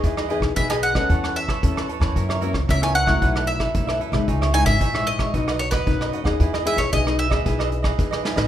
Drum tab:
HH |x-x-xxx-xxxxx-x-|xxx-x-x-xxx-x-xx|x-x-xxx-xxx-x-x-|xxx-x-xxxxx-x---|
SD |-r-r-r-r-r-r-r-r|-r-r-r-r-r-r-r-r|-r-r-r-r-r-r-r-r|-r-r-r-r-r-r-roo|
BD |o--oo--oo--oo--o|o--oo--oo--oo--o|o--oo--oo--oo--o|o--oo--oo--oo---|